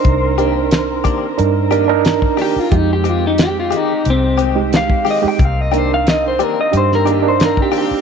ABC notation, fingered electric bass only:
X:1
M:4/4
L:1/16
Q:1/4=90
K:Cm
V:1 name="Fingered electric bass" clef=bass
C,,8 G,,6- G,, z | F,,8 C,,6- C,, z | C,,8 G,,6- G,, z |]